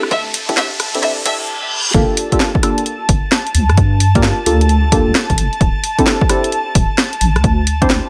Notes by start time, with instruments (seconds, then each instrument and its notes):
Already playing: analog synth pad A5, riser
0.03 wobble bass D2, cross-stick
0.11 violin section E5, kick, closed hi-hat
0.34 open hi-hat
0.49 synth stab C4 D4 E4 G4 A4, kick, closed hi-hat
0.57 violin section E5, snare
0.80 wobble bass A1, cross-stick, open hi-hat
0.95 synth stab C4 D4 E4 G4 A4, closed hi-hat
1.03 synth stab C4 D4 E4 G4 A4, violin section E5, closed hi-hat, reverse cymbal
1.26 synth stab C4 D4 E4 G4 A4, violin section E5, kick, open hi-hat
1.40 wobble bass A1
1.94 wobble bass G1, synth stab A#3 D4 F4 G4 A4, analog synth pad A5, kick, closed hi-hat
2.17 open hi-hat
2.32 synth stab A#3 D4 F4 G4 A4, kick, closed hi-hat
2.40 snare
2.55 kick
2.63 synth stab A#3 D4 F4 G4 A4, cross-stick, open hi-hat
2.78 closed hi-hat
2.86 closed hi-hat
3.09 wobble bass G1, kick, open hi-hat
3.32 snare
3.47 closed hi-hat
3.55 wobble bass D2, open hi-hat
3.69 wobble bass G2, cross-stick, closed hi-hat
3.77 kick, closed hi-hat
4.00 open hi-hat
4.15 synth stab A#3 D4 F4 G4 A#4, kick, closed hi-hat
4.23 snare
4.46 wobble bass D2, synth stab A#3 D4 F4 G4 A4, open hi-hat
4.61 closed hi-hat
4.69 closed hi-hat
4.92 synth stab A#3 D4 F4 G4 A4, kick, open hi-hat
5.07 wobble bass D2
5.15 snare
5.30 wobble bass G1, kick, closed hi-hat
5.38 wobble bass G1, open hi-hat
5.53 closed hi-hat
5.61 wobble bass D1, kick, closed hi-hat
5.84 open hi-hat
5.99 synth stab C4 D4 E4 G4 A4, kick, closed hi-hat
6.07 snare
6.21 kick
6.29 synth stab C4 D4 E4 G4 A4, cross-stick, open hi-hat
6.44 closed hi-hat
6.52 closed hi-hat
6.75 wobble bass D1, kick, open hi-hat
6.98 snare
7.13 closed hi-hat
7.21 wobble bass A1, open hi-hat
7.36 wobble bass D2, cross-stick, closed hi-hat
7.44 kick, closed hi-hat
7.67 open hi-hat
7.82 synth stab C4 D4 E4 G4 C5, kick, closed hi-hat
7.90 snare